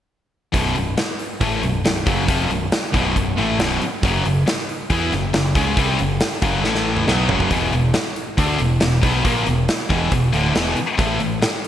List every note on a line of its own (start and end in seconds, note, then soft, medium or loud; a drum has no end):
0.53 0.74 B0 medium
0.53 0.74 B1 medium
0.53 0.74 F#2 loud
0.53 0.75 B2 medium
0.53 kick loud
0.53 open hi-hat medium
0.75 0.97 B0 medium
0.75 0.93 B1 medium
0.75 0.93 F#2 medium
0.75 open hi-hat soft
0.97 muted distorted electric guitar stroke soft
0.97 muted picked electric bass stroke soft
0.97 snare loud
0.97 open hi-hat medium
1.19 open hi-hat medium
1.41 1.62 A1 medium
1.41 1.62 A2 medium
1.41 1.63 E3 medium
1.41 1.63 A3 medium
1.41 kick loud
1.41 open hi-hat medium
1.63 1.83 B0 medium
1.63 1.81 B1 medium
1.63 1.81 F#2 medium
1.63 open hi-hat soft
1.84 2.05 B0 medium
1.84 2.02 B1 medium
1.84 2.03 F#2 medium
1.84 snare loud
1.84 open hi-hat medium
2.06 2.27 F#1 medium
2.06 2.27 F#2 medium
2.06 2.28 C#3 medium
2.06 2.28 F#3 loud
2.06 kick loud
2.06 open hi-hat medium
2.28 2.49 F1 medium
2.28 2.49 F2 medium
2.28 2.50 C3 loud
2.28 2.50 F3 loud
2.28 kick loud
2.28 open hi-hat medium
2.49 2.70 B0 medium
2.49 2.68 B1 medium
2.49 2.68 F#2 medium
2.49 open hi-hat medium
2.72 snare loud
2.72 open hi-hat medium
2.93 3.14 B0 medium
2.93 3.15 B1 medium
2.93 3.15 F#2 medium
2.93 3.16 B2 medium
2.93 kick medium
2.93 open hi-hat soft
3.16 3.36 B0 medium
3.16 3.34 B1 medium
3.16 3.34 F#2 medium
3.16 kick medium
3.16 open hi-hat medium
3.37 3.58 A1 medium
3.37 3.58 A2 medium
3.37 3.59 E3 loud
3.37 3.59 A3 loud
3.37 open hi-hat soft
3.58 3.79 B0 loud
3.58 3.80 B1 loud
3.58 3.81 F#2 loud
3.58 3.81 B2 loud
3.58 snare loud
3.58 open hi-hat medium
3.82 muted distorted electric guitar stroke medium
3.82 open hi-hat medium
4.03 4.23 F#1 medium
4.03 4.23 F#2 medium
4.03 4.24 C#3 medium
4.03 4.25 F#3 loud
4.03 kick loud
4.03 open hi-hat medium
4.24 4.45 F#1 medium
4.24 4.42 F#2 medium
4.24 4.42 C#3 medium
4.24 open hi-hat medium
4.46 muted picked electric bass stroke soft
4.46 muted distorted electric guitar stroke medium
4.46 snare loud
4.46 open hi-hat medium
4.69 open hi-hat soft
4.90 5.10 E2 medium
4.90 5.11 E3 medium
4.90 5.12 B3 loud
4.90 5.12 E4 medium
4.90 kick medium
4.90 open hi-hat medium
5.12 5.33 F#1 medium
5.12 5.30 F#2 medium
5.12 5.30 C#3 medium
5.12 snare soft
5.12 open hi-hat soft
5.33 5.54 F#1 medium
5.33 5.51 F#2 medium
5.33 5.51 C#3 medium
5.33 snare loud
5.33 open hi-hat medium
5.55 5.76 C#2 medium
5.55 5.77 C#3 medium
5.55 5.77 G#3 medium
5.55 5.77 C#4 medium
5.55 kick loud
5.55 open hi-hat medium
5.77 5.97 C2 medium
5.77 5.99 C3 loud
5.77 5.99 G3 loud
5.77 5.99 C4 medium
5.77 kick loud
5.77 open hi-hat medium
5.99 6.20 F#1 medium
5.99 6.17 F#2 medium
5.99 6.17 C#3 medium
5.99 open hi-hat medium
6.20 snare loud
6.20 open hi-hat medium
6.42 6.63 F#1 medium
6.42 6.63 F#2 medium
6.42 6.64 C#3 medium
6.42 6.64 F#3 medium
6.42 kick loud
6.42 open hi-hat soft
6.63 7.05 A1 medium
6.63 7.07 A2 medium
6.63 7.07 E3 medium
6.63 7.07 A3 loud
6.63 snare medium
6.75 snare medium
6.97 mid tom medium
7.07 7.28 B1 medium
7.07 7.29 B2 medium
7.07 7.29 F#3 medium
7.07 7.29 B3 loud
7.07 snare medium
7.29 7.50 F#1 medium
7.29 7.50 F#2 medium
7.29 7.51 C#3 medium
7.29 7.51 F#3 medium
7.29 floor tom medium
7.40 kick medium
7.50 7.71 E1 medium
7.50 7.72 E2 medium
7.50 7.72 B2 loud
7.50 7.73 E3 medium
7.50 kick medium
7.50 open hi-hat medium
7.73 7.93 E1 medium
7.73 7.91 E2 medium
7.73 7.91 B2 medium
7.73 open hi-hat soft
7.94 muted distorted electric guitar stroke soft
7.94 snare loud
7.94 open hi-hat medium
8.16 open hi-hat soft
8.38 8.58 D2 medium
8.38 8.59 D3 medium
8.38 8.60 A3 medium
8.38 8.60 D4 loud
8.38 kick medium
8.38 open hi-hat medium
8.59 8.80 E1 medium
8.59 8.77 E2 medium
8.59 8.77 B2 medium
8.59 open hi-hat soft
8.80 9.02 E1 medium
8.80 8.99 E2 medium
8.80 8.99 B2 medium
8.80 snare loud
8.80 open hi-hat medium
9.02 9.24 B1 medium
9.02 9.23 B2 medium
9.02 9.24 F#3 medium
9.02 9.25 B3 medium
9.02 kick loud
9.02 open hi-hat medium
9.24 9.45 A#1 medium
9.24 9.45 A#2 loud
9.24 9.46 F3 loud
9.24 9.47 A#3 loud
9.24 kick loud
9.24 open hi-hat medium
9.46 9.67 E1 medium
9.46 9.64 E2 medium
9.46 9.64 B2 medium
9.46 open hi-hat medium
9.69 snare loud
9.69 open hi-hat medium
9.89 10.11 E1 medium
9.89 10.10 E2 medium
9.89 10.10 B2 loud
9.89 10.12 E3 medium
9.89 kick loud
9.89 open hi-hat soft
10.11 10.32 E1 medium
10.11 10.29 E2 medium
10.11 10.29 B2 medium
10.11 kick medium
10.11 open hi-hat medium
10.32 10.54 D1 medium
10.32 10.54 D2 loud
10.32 10.54 A2 loud
10.32 10.55 D3 loud
10.32 open hi-hat soft
10.54 10.76 E1 loud
10.54 10.75 E2 medium
10.54 10.77 B2 loud
10.54 10.77 E3 loud
10.54 snare loud
10.54 open hi-hat medium
10.77 muted distorted electric guitar stroke medium
10.77 open hi-hat medium
10.97 11.19 A1 medium
10.97 11.19 A2 loud
10.97 11.19 E3 loud
10.97 11.20 A3 loud
10.97 kick loud
10.97 open hi-hat medium
11.20 11.41 A1 medium
11.20 11.38 A2 medium
11.20 11.38 E3 medium
11.20 open hi-hat soft
11.42 muted distorted electric guitar stroke medium
11.42 snare loud
11.42 open hi-hat medium
11.64 open hi-hat soft